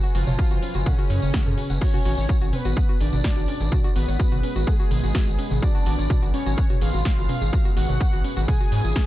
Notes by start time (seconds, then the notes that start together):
Already playing: F#2 B2 B4 G#5
0.03 F#4, tambourine
0.15 F#1 F3 F4 F#4, open hi-hat
0.27 F#1 C#5, mid tom, tambourine
0.39 F#4, kick, tambourine
0.50 F#1 F#4, tambourine
0.62 C#4, open hi-hat
0.74 F#1 F#4, tambourine
0.86 C#3 C#4 F#5, kick, mid tom, tambourine
0.99 F#4, tambourine
1.10 F#2 C#5, open hi-hat
1.22 F#1 C#5, tambourine
1.34 F#4, kick, snare, tambourine
1.46 F#2 A4, mid tom, tambourine
1.58 F#4, open hi-hat
1.70 F#1 F#5, tambourine
1.81 F#2 B2 G#3 B3 C#4 F#4 G#4 B4 C#5, kick, tambourine, crash
1.94 F#4, mid tom, tambourine
2.05 G#1 F#4, open hi-hat
2.17 G#1 C#5, tambourine
2.29 F#4, kick, tambourine
2.41 G#1 F#4, tambourine
2.53 B3 C#4 B4, mid tom, open hi-hat
2.65 G#1 F#4, tambourine
2.76 F#5, kick, tambourine
2.89 F#4, tambourine
3.01 G#1 D4 G#4 D5, open hi-hat
3.13 G#1 F#4, mid tom, tambourine
3.24 F#4, kick, snare, tambourine
3.37 G#1 F#4, tambourine
3.48 C#4, open hi-hat
3.61 G#1 G#4, tambourine
3.72 F#4, kick, mid tom, tambourine
3.84 F#4, tambourine
3.96 G#1 B3 F#4 B4, open hi-hat
4.08 G#1 C#5, tambourine
4.20 F#4, kick, tambourine
4.32 G#1 F#4, mid tom, tambourine
4.43 C#4, open hi-hat
4.56 G#1 F#4, tambourine
4.67 G#3 G#4 F#5, kick, tambourine
4.79 F#4, tambourine
4.91 G#1 G#4, mid tom, open hi-hat
5.03 G#1 F#4, tambourine
5.15 F#4, kick, snare, tambourine
5.27 G#1 F#4, tambourine
5.39 C#4, open hi-hat
5.51 G#1 G#4, mid tom, tambourine
5.62 D4 F#4 D5, kick, tambourine
5.75 F#4, tambourine
5.86 G#1 F#4, open hi-hat
5.99 G#1 C#5, tambourine
6.10 F#4, kick, mid tom, tambourine
6.22 G#1 F#4, tambourine
6.34 C#4 C#5, open hi-hat
6.46 G#1 F#4, tambourine
6.57 F#5, kick, tambourine
6.69 F#4, mid tom, tambourine
6.81 G#1 F4 G#4 F5, open hi-hat
6.93 G#1 F#4, tambourine
7.05 F#4, kick, snare, tambourine
7.18 G#1 F#4, tambourine
7.29 C#4, mid tom, open hi-hat
7.42 G#1 G#4, tambourine
7.53 F#4, kick, tambourine
7.65 F#4, tambourine
7.77 G#1 F#4 F#5, open hi-hat
7.89 G#1 C#5, mid tom, tambourine
8.00 F#4, kick, tambourine
8.13 G#1 F#4, tambourine
8.24 C#4, open hi-hat
8.37 G#1 F#4, tambourine
8.48 G#4 F#5 G#5, kick, mid tom, tambourine
8.61 F#4, tambourine
8.72 G#2 C#5, open hi-hat
8.84 G#1 F4, tambourine
8.96 C#4, kick, snare, tambourine